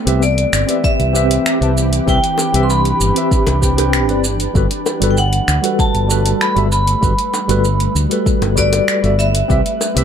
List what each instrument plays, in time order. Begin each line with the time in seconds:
Already playing: ambient pad E3 C4 G4 B4
0.05 fretless electric bass C2, tine electric piano C4 G4 B4 E5, closed hi-hat, shaker
0.23 vibraphone D5, shaker
0.38 closed hi-hat, shaker
0.53 fretless electric bass G1, finger snap, shaker
0.67 tine electric piano C4 G4 B4 E5, closed hi-hat, shaker
0.84 vibraphone E5, kick, shaker
0.99 fretless electric bass C2, closed hi-hat, shaker
1.13 tine electric piano C4 G4 B4 E5, shaker
1.31 closed hi-hat, shaker
1.46 finger snap, shaker
1.60 fretless electric bass C2, tine electric piano C4 G4 B4 A5, closed hi-hat, shaker
1.77 shaker
1.93 closed hi-hat, shaker
2.06 fretless electric bass C2, tine electric piano C4 G4 B4 E5, ambient pad D4, vibraphone G5, kick, shaker
2.24 closed hi-hat, shaker
2.38 high bongo, shaker
2.53 fretless electric bass C2, tine electric piano C4 G4 B4 E5, closed hi-hat, shaker
2.63 vibraphone C6
2.70 vibraphone B5, shaker
2.85 closed hi-hat, shaker
3.00 fretless electric bass G1, shaker
3.15 tine electric piano C4 G4 B4 E5, closed hi-hat, shaker
3.31 kick, shaker
3.47 fretless electric bass C2, closed hi-hat, high bongo, shaker
3.61 tine electric piano C4 G4 B4 G5, kick, shaker
3.76 tine electric piano C4 G4 B4 G5, closed hi-hat, high bongo, shaker
3.93 finger snap, shaker
4.07 fretless electric bass G1, tine electric piano C4 G4 B4 D5, closed hi-hat, shaker
4.24 shaker
4.40 closed hi-hat, shaker
4.54 fretless electric bass G1, tine electric piano G3 F#4 A4 B4, ambient pad G3 A3, kick, shaker
4.71 closed hi-hat, shaker
4.86 high bongo, shaker
5.00 fretless electric bass G1, tine electric piano G3 F#4 A4 B4, closed hi-hat, shaker
5.11 vibraphone G5
5.17 vibraphone F#5, shaker
5.33 closed hi-hat, shaker
5.48 fretless electric bass D2, finger snap, shaker
5.62 tine electric piano G3 F#4 A4 B4, closed hi-hat, shaker
5.79 vibraphone A5, kick, shaker
5.95 fretless electric bass G1, closed hi-hat, shaker
6.08 tine electric piano G3 F#4 A4 B4, shaker
6.26 closed hi-hat, shaker
6.41 vibraphone B5, finger snap, shaker
6.55 fretless electric bass G1, tine electric piano G3 F#4 A4 E5, closed hi-hat, shaker
6.72 vibraphone B5, shaker
6.87 closed hi-hat, shaker
7.01 fretless electric bass G1, tine electric piano G3 F#4 A4 B4, kick, shaker
7.18 closed hi-hat, shaker
7.34 high bongo, shaker
7.48 fretless electric bass G1, tine electric piano G3 F#4 A4 B4, closed hi-hat, shaker
7.65 shaker
7.80 closed hi-hat, shaker
7.95 fretless electric bass D2, shaker
8.09 tine electric piano G3 F#4 A4 B4, closed hi-hat, shaker
8.26 kick, shaker
8.42 fretless electric bass G1, closed hi-hat, high bongo, shaker
8.56 tine electric piano G3 F#4 A4 B4, vibraphone D5, kick, shaker
8.73 closed hi-hat, high bongo, shaker
8.88 finger snap, shaker
9.02 fretless electric bass G1, tine electric piano G3 F#4 A4 E5, closed hi-hat, shaker
9.19 vibraphone E5, shaker
9.35 closed hi-hat, shaker
9.48 fretless electric bass C2, ambient pad E3 C4, tine electric piano C4 G4 B4 E5, kick, shaker
9.66 closed hi-hat, shaker
9.81 high bongo, shaker
9.94 fretless electric bass C2, tine electric piano C4 G4 B4 E5, closed hi-hat, shaker